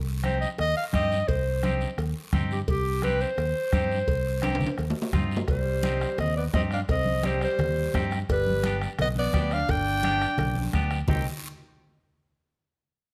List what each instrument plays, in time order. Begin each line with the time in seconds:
Already playing: fingered electric bass C2
0.24 clean electric guitar C4 D#4 G4, clarinet C5, bombo rim, high conga, short guiro
0.41 clarinet D#5, short guiro
0.58 fingered electric bass D#2, clarinet D#5, bombo rim, cowbell, high conga, long guiro
0.77 clarinet F5
0.93 fingered electric bass G2, clean electric guitar C4 D#4 G4, clarinet D#5, bombo low, bombo rim, high conga, short guiro
1.12 short guiro
1.28 fingered electric bass C2, clarinet C5, bombo low, cowbell, high conga, long guiro
1.63 clean electric guitar C4 D#4 G4, bombo rim, high conga, short guiro
1.81 short guiro
1.98 fingered electric bass D#2, bombo rim, cowbell, high conga, long guiro
2.33 fingered electric bass G2, clean electric guitar C4 D#4 G4, bombo low, bombo rim, high conga, low conga, short guiro
2.51 clarinet G4, short guiro
2.67 fingered electric bass C2, clarinet G4, bombo low, cowbell, high conga, long guiro
3.02 clean electric guitar C4 D#4 G4, clarinet B4, bombo rim, high conga, short guiro
3.21 clarinet C5, short guiro
3.37 fingered electric bass D#2, bombo rim, cowbell, high conga, long guiro
3.73 fingered electric bass G2, clean electric guitar C4 D#4 G4, bombo low, bombo rim, high conga, short guiro
3.92 short guiro
4.07 fingered electric bass C2, bombo low, cowbell, high conga, long guiro
4.42 clean electric guitar C4 D#4 G4, bombo rim, high conga, high timbale, short guiro
4.55 high timbale
4.60 low conga, short guiro
4.67 high timbale
4.78 fingered electric bass D#2, bombo rim, cowbell, high conga, long guiro
4.90 low timbale
5.02 low timbale
5.13 fingered electric bass G2, clean electric guitar C4 D#4 F4, bombo low, bombo rim, high conga, low conga, short guiro
5.31 short guiro
5.37 low timbale
5.48 fingered electric bass C2, tenor saxophone G3, clarinet C5, bombo low, bombo rim, cowbell, high conga, long guiro
5.83 clean electric guitar C4 D#4 G4, bombo rim, high conga, short guiro
6.01 bombo rim, short guiro
6.18 fingered electric bass D#2, tenor saxophone C4, clarinet D#5, bombo rim, cowbell, high conga, low conga, long guiro
6.36 tenor saxophone B3, clarinet D5
6.53 fingered electric bass G2, clean electric guitar C4 D#4 G4, tenor saxophone C4, clarinet D#5, bombo low, bombo rim, high conga, low timbale, short guiro
6.71 tenor saxophone D4, clarinet F5, bombo rim, short guiro
6.88 fingered electric bass C2, tenor saxophone C4, clarinet D#5, bombo low, bombo rim, cowbell, high conga, long guiro
7.05 high conga
7.23 tenor saxophone G3, clean electric guitar C4 D#4 G4, clarinet C5, bombo rim, high conga, short guiro
7.41 tenor saxophone G3, clarinet C5, bombo rim, short guiro
7.59 fingered electric bass D#2, bombo rim, cowbell, high conga, low conga, long guiro
7.94 fingered electric bass G2, clean electric guitar C4 D#4 G4, bombo low, bombo rim, high conga, low timbale, short guiro
8.11 bombo rim, short guiro
8.29 fingered electric bass G1, tenor saxophone G3, clarinet B4, bombo low, bombo rim, cowbell, high conga, long guiro
8.47 high conga
8.63 clean electric guitar B3 D4 G4, bombo rim, high conga, short guiro
8.82 bombo rim, short guiro
8.99 fingered electric bass B1, tenor saxophone B3, clarinet D#5, bombo rim, cowbell, high conga, low conga, long guiro
9.16 tenor saxophone B3, clarinet D5, high conga
9.33 fingered electric bass D2, clean electric guitar B3 D4 G4, bombo low, bombo rim, high conga, low timbale, short guiro
9.51 tenor saxophone D4, clarinet F5, bombo rim, short guiro
9.68 fingered electric bass G1, tenor saxophone D4, clarinet G5, bombo low, bombo rim, cowbell, high conga, low conga, long guiro
10.03 clean electric guitar B3 D4 G4, bombo rim, high conga, short guiro
10.21 bombo rim, short guiro
10.38 fingered electric bass B1, bombo rim, cowbell, high conga, low conga, long guiro
10.55 high conga
10.73 fingered electric bass D2, clean electric guitar B3 D4 G4, bombo low, bombo rim, high conga, short guiro
10.91 bombo rim, short guiro
11.08 fingered electric bass C2, tenor saxophone D#3, clean electric guitar C4 D#4 G4, clarinet G5, bombo low, low conga, low timbale, long guiro